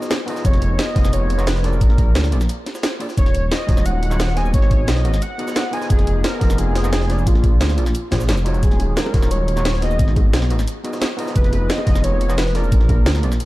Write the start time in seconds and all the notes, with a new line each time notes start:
0.02 snare, cabasa
0.10 B3 D#4 F#4 G#4 D#5, snare, closed hi-hat, cabasa
0.26 B3 D#4 F4 G#4 D#5, closed hi-hat, open hi-hat
0.36 snare, cabasa
0.45 F1 C#5, kick, closed hi-hat, cabasa
0.53 snare, closed hi-hat
0.62 closed hi-hat
0.79 D#5, snare, closed hi-hat, cabasa
0.94 F1 B3 D#4 F4 G#4 D#5, kick, snare, closed hi-hat
1.04 snare, cabasa
1.13 F1 C#5, closed hi-hat, cabasa
1.30 closed hi-hat
1.38 B3 D#4 F4 G#4 D#5, snare, closed hi-hat, cabasa
1.47 B4, snare, closed hi-hat, cabasa
1.56 snare
1.62 A#3 D4 F4 G#4 A#4 D5, snare, closed hi-hat
1.73 cabasa
1.81 A#1, kick, closed hi-hat, cabasa
1.90 snare
1.98 kick, closed hi-hat
2.15 D2, snare, closed hi-hat, cabasa
2.24 snare, cabasa
2.31 A#1 A#3 D4 F4 G#4 D5, closed hi-hat
2.41 snare, closed hi-hat, cabasa
2.49 closed hi-hat, cabasa
2.66 snare, closed hi-hat
2.75 snare, cabasa
2.83 snare, closed hi-hat, cabasa
2.99 A#3 D4 F4 G#4 D5, closed hi-hat, open hi-hat
3.09 snare, cabasa
3.17 D#1 C#5, kick, closed hi-hat, cabasa
3.26 snare, closed hi-hat
3.35 closed hi-hat
3.52 D#5, snare, closed hi-hat, cabasa
3.67 D#1 G#3 D#4 F4 F#4 C#5, kick, snare, closed hi-hat
3.77 snare, cabasa
3.86 D#1 F#5, closed hi-hat, cabasa
4.03 closed hi-hat
4.10 G#3 D#4 F4 F#4 C#5, snare, closed hi-hat, cabasa
4.20 snare, closed hi-hat, cabasa
4.28 snare
4.35 B3 D#4 F#4 G#4 D#5 G#5, snare, closed hi-hat
4.45 cabasa
4.54 G#1 C#5, kick, closed hi-hat, cabasa
4.62 snare
4.71 kick, closed hi-hat
4.88 B1 D#5, snare, closed hi-hat, cabasa
4.96 snare
5.04 G#1 B3 D#4 F#4 G#4 D#5, closed hi-hat
5.14 snare, closed hi-hat, cabasa
5.22 F#5, closed hi-hat, cabasa
5.38 B3 D#4 F#4 G#4 D#5, closed hi-hat
5.48 snare, cabasa
5.55 B3 D#4 F#4 G#4 D#5, snare, closed hi-hat, cabasa
5.71 B3 D#4 F4 G#4 D#5 G#5, closed hi-hat, open hi-hat
5.82 snare, cabasa
5.90 F1 G#4, kick, closed hi-hat, cabasa
5.99 snare, closed hi-hat
6.07 closed hi-hat
6.24 A#4, snare, closed hi-hat, cabasa
6.39 F1 B3 D#4 F4 G#4 D#5, kick, snare, closed hi-hat
6.50 snare, cabasa
6.58 F1 G#4, closed hi-hat, cabasa
6.75 snare, closed hi-hat
6.83 B3 D#4 F4 G#4 D#5, snare, closed hi-hat, cabasa
6.93 G#4, snare, closed hi-hat, cabasa
7.01 snare
7.08 A#3 D4 F4 G#4 D5, snare, closed hi-hat
7.18 cabasa
7.27 A#1 F4, kick, closed hi-hat, cabasa
7.35 snare
7.44 kick, closed hi-hat
7.61 D2, snare, closed hi-hat, cabasa
7.69 snare, cabasa
7.77 A#1 A#3 D4 F4 G#4 D5, closed hi-hat
7.86 snare, closed hi-hat, cabasa
7.95 closed hi-hat, cabasa
8.11 A#1 A#3 D4 F4 G#4 D5, kick, snare, closed hi-hat
8.20 snare, cabasa
8.28 F1 A#3 D4 F4 G#4 D5, snare, closed hi-hat, cabasa
8.37 closed hi-hat, cabasa
8.44 G#3 D#4 F4 F#4 C#5, closed hi-hat
8.54 closed hi-hat, cabasa
8.63 D#1 G#4, kick, closed hi-hat, cabasa
8.71 snare, closed hi-hat
8.79 closed hi-hat, high bongo
8.97 A#4, snare, closed hi-hat, cabasa
9.06 high bongo
9.12 D#1 G#3 D#4 F4 F#4 C#5, kick, snare, closed hi-hat
9.23 snare, cabasa
9.31 D#1 C#5, closed hi-hat, cabasa
9.48 closed hi-hat
9.56 G#3 D#4 F4 F#4 C#5, snare, closed hi-hat, cabasa
9.65 snare, closed hi-hat, cabasa
9.74 snare
9.81 B3 D#4 F#4 G#4 D#5, snare, closed hi-hat
9.91 cabasa
9.99 G#1, kick, closed hi-hat, cabasa
10.08 snare
10.16 kick, closed hi-hat, high bongo
10.33 B1, snare, closed hi-hat, cabasa
10.42 snare
10.50 G#1 B3 D#4 F#4 G#4 D#5, closed hi-hat
10.59 snare, closed hi-hat, cabasa
10.68 closed hi-hat, cabasa
10.84 B3 D#4 F#4 G#4 D#5, closed hi-hat
10.93 snare, cabasa
11.01 B3 D#4 F#4 G#4 D#5, snare, closed hi-hat, cabasa
11.17 B3 D#4 F4 G#4 D#5, closed hi-hat, open hi-hat
11.27 snare, cabasa
11.36 F1 B4, kick, closed hi-hat, cabasa
11.44 snare, closed hi-hat
11.53 closed hi-hat, high bongo
11.70 D#5, snare, closed hi-hat, cabasa
11.78 high bongo
11.85 F1 B3 D#4 F4 G#4 D#5, kick, snare, closed hi-hat
11.95 snare, cabasa
12.04 F1 C#5, closed hi-hat, cabasa
12.21 closed hi-hat
12.29 B3 D#4 F4 G#4 D#5, snare, closed hi-hat, cabasa
12.38 B4, snare, closed hi-hat, cabasa
12.47 snare
12.53 A#3 D4 F4 G#4 A#4 D5, snare, closed hi-hat
12.64 cabasa
12.72 A#1, kick, closed hi-hat, cabasa
12.81 snare
12.89 kick, closed hi-hat, high bongo
13.06 D2, snare, closed hi-hat, cabasa
13.15 snare, cabasa
13.22 A#1 A#3 D4 F4 G#4 D5, closed hi-hat
13.32 snare, closed hi-hat, cabasa
13.40 closed hi-hat, cabasa